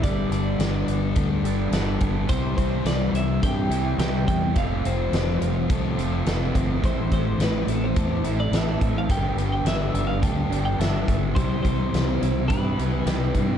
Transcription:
<<
  \new Staff \with { instrumentName = "Clean electric guitar" } { \time 4/4 \key g \mixolydian \tempo 4 = 106 d''2.~ d''8 r8 | c''8 c''8 d''8 e''8 g''4 g''8 g''8 | f''8 c''2. r8 | c''8 c''8 b'8 a'16 c''4 d''16 e''8. f''16 |
g''8. g''16 e''8. f''16 g''8. g''16 e''8. r16 | c''8 c''4. b'2 | }
  \new Staff \with { instrumentName = "Clean electric guitar" } { \time 4/4 \key g \mixolydian g8 b8 g8 d'8 a'8 d'8 a'8 b8 | g8 c'8 g8 e'8 g'8 e'8 g'8 c'8 | g8 c'8 g8 f'8 a'8 f'8 a'8 c'8 | g8 c'8 g8 e'8 a'8 e'8 a'8 c'8 |
g8 b8 g8 d'8 a'8 d'8 a'8 b8 | g8 c'8 g8 e'8 g'8 e'8 g'8 c'8 | }
  \new Staff \with { instrumentName = "Overdriven electric guitar" } { \clef bass \time 4/4 \key g \mixolydian <g, d g b d' g'>2~ <g, d g b d' g'>8 <g, d g b d' g'>8 <g, d g b d' g'>4 | <c e g c' e'>2~ <c e g c' e'>8 <c e g c' e'>8 <c e g c' e'>4 | <f, c f a c' f'>2~ <f, c f a c' f'>8 <f, c f a c' f'>8 <f, c f a c' f'>4 | <a, e a c' e'>2~ <a, e a c' e'>8 <a, e a c' e'>8 <a, e a c' e'>4 |
<g, d g b d' g'>2~ <g, d g b d' g'>8 <g, d g b d' g'>8 <g, d g b d' g'>4 | <c e g c' e'>2~ <c e g c' e'>8 <c e g c' e'>8 <c e g c' e'>4 | }
  \new Staff \with { instrumentName = "Distorted electric guitar" } { \clef bass \time 4/4 \key g \mixolydian <g, d g>2 <g, d g>2 | <c g c'>2 <c g c'>2 | <f, c f>2 <f, c f>2 | <a, e a>2 <a, e a>2 |
<g, d g>2 <g, d g>2 | <c g c'>2 <c g c'>2 | }
  \new Staff \with { instrumentName = "Fingered electric bass" } { \clef bass \time 4/4 \key g \mixolydian g,,8 g,,8 g,,8 g,,8 d,8 g,,8 g,,8 g,,8 | c,8 c,8 c,8 c,8 g,8 c,8 c,8 e,8 | f,,8 f,,8 f,,8 f,,8 c,8 f,,8 f,,8 g,,8 | a,,8 a,,8 a,,8 a,,8 e,8 a,,8 a,,8 a,,8 |
g,,8 g,,8 g,,8 g,,8 d,8 g,,8 g,,8 g,,8 | c,8 c,8 c,8 c,8 g,8 c,8 c,8 g,8 | }
  \new DrumStaff \with { instrumentName = "Drums" } \drummode { \time 4/4 <hh bd>8 hh8 <hh sn>8 hh8 <hh bd>8 hh8 <hh sn>8 <hh bd>8 | <hh bd>8 <hh bd>8 <hh sn>8 hh8 <hh bd>8 hh8 <hh sn>8 <hh bd>8 | <hh bd>8 hh8 <hh sn>8 hh8 <hh bd>8 hh8 <hh sn>8 <hh bd>8 | <hh bd>8 <hh bd>8 <hh sn>8 hh8 <hh bd>8 hh8 <hh sn>8 <hh bd>8 |
<hh bd>8 hh8 <hh sn>8 hh8 <hh bd>8 hh8 <hh sn>8 <hh bd>8 | <hh bd>8 <hh bd>8 <hh sn>8 hh8 <hh bd>8 hh8 <hh sn>8 <hh bd>8 | }
>>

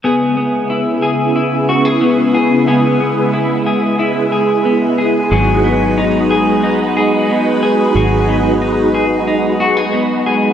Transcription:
<<
  \new Staff \with { instrumentName = "Clean electric guitar" } { \time 4/4 \key cis \minor \tempo 4 = 91 <b gis'>8 b8 e'8 gis'8 e'8 fis'16 gis'16 b8 gis'8 | <b gis'>8 b8 e'8 gis'8 e'8 gis'8 b8 gis'8 | <fis gis'>8 b8 dis'8 gis'8 dis'8 gis'8 b8 gis'8 | <fis gis'>8 b8 dis'8 gis'8 dis'8 fis'16 gis'16 b8 gis'8 | }
  \new Staff \with { instrumentName = "String machine" } { \time 4/4 \key cis \minor <cis gis b e'>1~ | <cis gis b e'>1 | <dis' fis' b'>1~ | <dis' fis' b'>1 | }
  \new Staff \with { instrumentName = "Fingered electric bass" } { \clef bass \time 4/4 \key cis \minor r1 | r1 | gis,,1 | gis,,1 | }
>>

